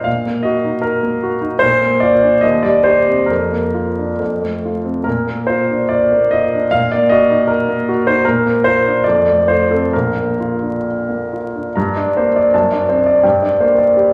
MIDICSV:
0, 0, Header, 1, 2, 480
1, 0, Start_track
1, 0, Key_signature, -2, "major"
1, 0, Tempo, 788436
1, 38, Time_signature, 2, 2, 24, 8
1, 1478, Tempo, 887574
1, 2438, Tempo, 847458
1, 3398, Tempo, 786370
1, 5318, Tempo, 906344
1, 6758, Tempo, 769231
1, 7238, Tempo, 718563
1, 8307, End_track
2, 0, Start_track
2, 0, Title_t, "Upright piano"
2, 0, Program_c, 0, 0
2, 0, Control_c, 0, 64, 127
2, 24, Note_on_c, 0, 77, 68
2, 37, Note_on_c, 0, 46, 40
2, 46, Control_c, 0, 64, 0
2, 152, Control_c, 0, 64, 127
2, 156, Note_on_c, 0, 58, 34
2, 260, Note_on_c, 0, 75, 63
2, 265, Note_off_c, 0, 77, 0
2, 273, Note_on_c, 0, 66, 40
2, 342, Note_off_c, 0, 58, 0
2, 392, Note_on_c, 0, 63, 36
2, 459, Note_off_c, 0, 66, 0
2, 497, Note_on_c, 0, 70, 58
2, 499, Note_off_c, 0, 75, 0
2, 626, Note_on_c, 0, 58, 36
2, 750, Note_on_c, 0, 66, 39
2, 771, Note_off_c, 0, 63, 0
2, 819, Note_off_c, 0, 58, 0
2, 861, Note_on_c, 0, 63, 47
2, 942, Note_off_c, 0, 66, 0
2, 963, Note_off_c, 0, 46, 0
2, 968, Note_on_c, 0, 72, 85
2, 981, Note_on_c, 0, 46, 56
2, 983, Note_off_c, 0, 70, 0
2, 985, Note_off_c, 0, 63, 0
2, 999, Control_c, 0, 64, 0
2, 1096, Control_c, 0, 64, 127
2, 1104, Note_on_c, 0, 58, 43
2, 1219, Note_on_c, 0, 74, 68
2, 1221, Note_off_c, 0, 72, 0
2, 1234, Note_on_c, 0, 65, 45
2, 1301, Note_off_c, 0, 58, 0
2, 1355, Note_on_c, 0, 62, 43
2, 1430, Note_off_c, 0, 65, 0
2, 1461, Note_off_c, 0, 46, 0
2, 1468, Note_on_c, 0, 75, 73
2, 1473, Note_off_c, 0, 74, 0
2, 1479, Note_off_c, 0, 62, 0
2, 1482, Note_on_c, 0, 39, 52
2, 1489, Control_c, 0, 64, 0
2, 1585, Control_c, 0, 64, 127
2, 1586, Note_on_c, 0, 74, 68
2, 1587, Note_off_c, 0, 75, 0
2, 1595, Note_on_c, 0, 55, 39
2, 1699, Note_on_c, 0, 72, 64
2, 1706, Note_off_c, 0, 74, 0
2, 1708, Note_on_c, 0, 67, 38
2, 1781, Note_off_c, 0, 55, 0
2, 1826, Note_on_c, 0, 60, 36
2, 1901, Note_off_c, 0, 67, 0
2, 1929, Note_on_c, 0, 70, 53
2, 1938, Note_off_c, 0, 39, 0
2, 1946, Note_off_c, 0, 72, 0
2, 1946, Note_on_c, 0, 41, 43
2, 1950, Note_off_c, 0, 60, 0
2, 1960, Control_c, 0, 64, 0
2, 2067, Note_on_c, 0, 58, 34
2, 2070, Control_c, 0, 64, 127
2, 2189, Note_on_c, 0, 65, 35
2, 2266, Note_off_c, 0, 58, 0
2, 2318, Note_on_c, 0, 62, 32
2, 2386, Note_off_c, 0, 65, 0
2, 2421, Note_off_c, 0, 41, 0
2, 2427, Note_off_c, 0, 70, 0
2, 2432, Note_on_c, 0, 41, 34
2, 2437, Note_off_c, 0, 62, 0
2, 2449, Control_c, 0, 64, 0
2, 2562, Note_on_c, 0, 57, 30
2, 2565, Control_c, 0, 64, 127
2, 2693, Note_on_c, 0, 65, 30
2, 2759, Note_off_c, 0, 57, 0
2, 2803, Note_on_c, 0, 60, 31
2, 2882, Note_off_c, 0, 65, 0
2, 2908, Note_off_c, 0, 41, 0
2, 2912, Note_on_c, 0, 70, 57
2, 2924, Note_off_c, 0, 60, 0
2, 2926, Note_on_c, 0, 46, 45
2, 2936, Control_c, 0, 64, 0
2, 3037, Control_c, 0, 64, 127
2, 3040, Note_on_c, 0, 58, 36
2, 3153, Note_on_c, 0, 72, 55
2, 3154, Note_off_c, 0, 70, 0
2, 3167, Note_on_c, 0, 65, 38
2, 3230, Note_off_c, 0, 58, 0
2, 3288, Note_on_c, 0, 62, 36
2, 3354, Note_off_c, 0, 65, 0
2, 3392, Note_on_c, 0, 74, 64
2, 3394, Note_off_c, 0, 72, 0
2, 3532, Note_on_c, 0, 58, 35
2, 3646, Note_off_c, 0, 74, 0
2, 3649, Note_on_c, 0, 75, 68
2, 3662, Note_on_c, 0, 65, 37
2, 3679, Note_off_c, 0, 62, 0
2, 3727, Note_off_c, 0, 58, 0
2, 3788, Note_on_c, 0, 62, 42
2, 3851, Note_off_c, 0, 65, 0
2, 3868, Note_off_c, 0, 46, 0
2, 3892, Note_off_c, 0, 75, 0
2, 3894, Note_on_c, 0, 77, 86
2, 3901, Note_off_c, 0, 62, 0
2, 3904, Control_c, 0, 64, 0
2, 3911, Note_on_c, 0, 46, 48
2, 4001, Control_c, 0, 64, 127
2, 4012, Note_off_c, 0, 77, 0
2, 4019, Note_on_c, 0, 74, 66
2, 4028, Note_on_c, 0, 58, 39
2, 4128, Note_on_c, 0, 75, 76
2, 4133, Note_off_c, 0, 74, 0
2, 4143, Note_on_c, 0, 66, 41
2, 4208, Note_off_c, 0, 58, 0
2, 4256, Note_on_c, 0, 63, 41
2, 4324, Note_off_c, 0, 66, 0
2, 4360, Note_on_c, 0, 70, 65
2, 4364, Note_off_c, 0, 75, 0
2, 4490, Note_on_c, 0, 58, 43
2, 4612, Note_on_c, 0, 66, 43
2, 4624, Note_off_c, 0, 63, 0
2, 4670, Note_off_c, 0, 58, 0
2, 4710, Note_off_c, 0, 70, 0
2, 4723, Note_on_c, 0, 72, 69
2, 4731, Note_on_c, 0, 63, 44
2, 4789, Note_off_c, 0, 66, 0
2, 4813, Note_off_c, 0, 46, 0
2, 4833, Note_on_c, 0, 70, 73
2, 4834, Note_off_c, 0, 72, 0
2, 4838, Note_off_c, 0, 63, 0
2, 4838, Control_c, 0, 64, 0
2, 4846, Note_on_c, 0, 46, 53
2, 4953, Control_c, 0, 64, 127
2, 4963, Note_on_c, 0, 58, 38
2, 5069, Note_off_c, 0, 70, 0
2, 5073, Note_on_c, 0, 72, 73
2, 5090, Note_on_c, 0, 65, 44
2, 5149, Note_off_c, 0, 58, 0
2, 5211, Note_on_c, 0, 62, 41
2, 5278, Note_off_c, 0, 65, 0
2, 5312, Note_off_c, 0, 46, 0
2, 5316, Note_on_c, 0, 74, 65
2, 5320, Note_off_c, 0, 72, 0
2, 5327, Note_off_c, 0, 62, 0
2, 5327, Control_c, 0, 64, 0
2, 5330, Note_on_c, 0, 41, 46
2, 5419, Control_c, 0, 64, 127
2, 5444, Note_on_c, 0, 57, 35
2, 5547, Note_off_c, 0, 74, 0
2, 5549, Note_on_c, 0, 72, 59
2, 5559, Note_on_c, 0, 65, 35
2, 5625, Note_off_c, 0, 57, 0
2, 5667, Note_off_c, 0, 72, 0
2, 5670, Note_on_c, 0, 69, 53
2, 5676, Note_on_c, 0, 60, 34
2, 5745, Note_off_c, 0, 65, 0
2, 5781, Note_off_c, 0, 41, 0
2, 5789, Note_on_c, 0, 70, 54
2, 5790, Note_off_c, 0, 69, 0
2, 5793, Note_off_c, 0, 60, 0
2, 5799, Control_c, 0, 64, 0
2, 5800, Note_on_c, 0, 34, 41
2, 5884, Control_c, 0, 64, 127
2, 5916, Note_on_c, 0, 58, 32
2, 6037, Note_on_c, 0, 65, 35
2, 6108, Note_off_c, 0, 58, 0
2, 6152, Note_on_c, 0, 62, 29
2, 6229, Note_off_c, 0, 65, 0
2, 6276, Note_off_c, 0, 70, 0
2, 6401, Note_on_c, 0, 58, 29
2, 6529, Note_on_c, 0, 65, 30
2, 6549, Note_off_c, 0, 62, 0
2, 6600, Note_off_c, 0, 58, 0
2, 6649, Note_on_c, 0, 62, 30
2, 6717, Note_off_c, 0, 65, 0
2, 6742, Note_off_c, 0, 34, 0
2, 6754, Note_on_c, 0, 82, 51
2, 6759, Note_off_c, 0, 62, 0
2, 6760, Note_on_c, 0, 43, 59
2, 6769, Control_c, 0, 64, 0
2, 6859, Control_c, 0, 64, 127
2, 6882, Note_on_c, 0, 62, 45
2, 6885, Note_on_c, 0, 74, 45
2, 6953, Note_off_c, 0, 82, 0
2, 7011, Note_on_c, 0, 72, 44
2, 7017, Note_on_c, 0, 58, 42
2, 7076, Note_off_c, 0, 62, 0
2, 7078, Note_off_c, 0, 74, 0
2, 7127, Note_off_c, 0, 72, 0
2, 7132, Note_on_c, 0, 74, 48
2, 7198, Note_off_c, 0, 58, 0
2, 7224, Note_off_c, 0, 43, 0
2, 7242, Note_off_c, 0, 74, 0
2, 7243, Note_on_c, 0, 81, 50
2, 7244, Note_on_c, 0, 42, 52
2, 7247, Control_c, 0, 64, 0
2, 7340, Control_c, 0, 64, 127
2, 7362, Note_on_c, 0, 74, 47
2, 7366, Note_on_c, 0, 62, 44
2, 7430, Note_off_c, 0, 81, 0
2, 7476, Note_on_c, 0, 72, 39
2, 7480, Note_on_c, 0, 60, 41
2, 7547, Note_off_c, 0, 74, 0
2, 7549, Note_off_c, 0, 62, 0
2, 7592, Note_off_c, 0, 72, 0
2, 7593, Note_on_c, 0, 74, 54
2, 7666, Note_off_c, 0, 60, 0
2, 7700, Note_off_c, 0, 42, 0
2, 7708, Note_on_c, 0, 79, 53
2, 7710, Note_on_c, 0, 43, 56
2, 7712, Note_off_c, 0, 74, 0
2, 7722, Control_c, 0, 64, 0
2, 7834, Note_on_c, 0, 62, 44
2, 7835, Note_on_c, 0, 74, 48
2, 7837, Control_c, 0, 64, 127
2, 7904, Note_off_c, 0, 79, 0
2, 7952, Note_on_c, 0, 58, 46
2, 7955, Note_on_c, 0, 72, 42
2, 8029, Note_off_c, 0, 62, 0
2, 8030, Note_off_c, 0, 74, 0
2, 8075, Note_on_c, 0, 74, 49
2, 8077, Note_off_c, 0, 72, 0
2, 8148, Note_off_c, 0, 58, 0
2, 8197, Note_on_c, 0, 67, 47
2, 8269, Note_off_c, 0, 74, 0
2, 8307, Note_off_c, 0, 43, 0
2, 8307, Note_off_c, 0, 67, 0
2, 8307, End_track
0, 0, End_of_file